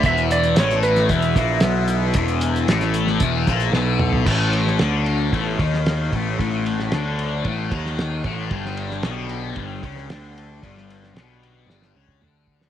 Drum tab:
CC |----------------|----------------|x---------------|----------------|
RD |----------------|----------------|--x-x-x-x-x-x-x-|x-x-x-x-x-x-x-x-|
HH |xxxxxxxxxxx-x-x-|xxxxxxx-x-xx----|----------------|----------------|
SD |----oo-o--o-o---|----oo-o--o-o---|---oo------oo---|---oo------oo---|
T2 |----------------|--------------o-|----------------|----------------|
FT |----------------|---------------o|----------------|----------------|
BD |o-------o-o-----|o-------o-o-----|o-------o-o---o-|o-------o-o---o-|

CC |----------------|----------------|
RD |x-x-x-x-x-x-x-x-|x-x-x-x---------|
HH |----------------|----------------|
SD |-o-oo------oo---|-o-oo---oo-----o|
T2 |----------------|------------o---|
FT |----------------|----------------|
BD |o-------o-o-----|o----------o--o-|